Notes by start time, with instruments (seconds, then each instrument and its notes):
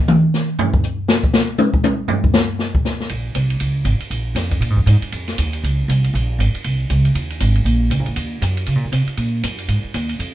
0.08 mid tom
0.34 snare, hi-hat pedal
0.59 floor tom
0.74 kick
0.83 hi-hat pedal
1.08 snare
1.24 kick
1.33 snare, hi-hat pedal
1.58 high tom
1.74 kick
1.84 hi-hat pedal, high tom
2.08 floor tom
2.24 kick
2.33 snare, hi-hat pedal
2.59 snare
2.75 kick
2.85 snare, hi-hat pedal
3.00 snare
3.09 upright bass A#1, ride
3.35 upright bass C2, hi-hat pedal, ride
3.50 ride
3.60 upright bass C#2, ride
3.85 upright bass G#1, hi-hat pedal, ride
4.00 muted upright bass stroke, ride
4.10 upright bass A#1, ride
4.35 upright bass F2, snare, hi-hat pedal, ride
4.51 kick, ride
4.60 upright bass A#2, ride
4.70 upright bass G#2
4.77 upright bass F2, kick
4.86 upright bass G#2, hi-hat pedal, ride
5.02 muted upright bass stroke, ride
5.12 upright bass F2, ride
5.28 snare, ride
5.38 upright bass D#2, hi-hat pedal, ride
5.53 ride
5.64 upright bass C#2, ride
5.88 upright bass C2, hi-hat pedal, ride
6.04 ride
6.14 upright bass A#1, ride
6.39 upright bass G#1, hi-hat pedal, ride
6.54 muted upright bass stroke, ride
6.64 upright bass C2, ride
6.90 upright bass C#2, hi-hat pedal, ride
7.05 ride
7.15 upright bass D#2, ride
7.30 ride
7.40 upright bass G#1, hi-hat pedal, ride
7.55 ride
7.65 upright bass A#1, ride
7.90 upright bass C#2, hi-hat pedal, ride
7.99 upright bass A#1
8.06 upright bass F#1, ride
8.16 upright bass D#2, ride
8.42 upright bass F#2, hi-hat pedal, ride
8.57 ride
8.66 upright bass C#3, ride
8.75 upright bass A#2
8.85 upright bass F#2
8.92 upright bass C3, hi-hat pedal, ride
9.07 muted upright bass stroke, ride
9.17 upright bass A#2, ride
9.43 upright bass F#2, hi-hat pedal, ride
9.58 ride
9.68 upright bass G#2, ride
9.84 muted upright bass stroke
9.94 upright bass D#2, hi-hat pedal, ride
10.09 ride
10.19 upright bass F2, ride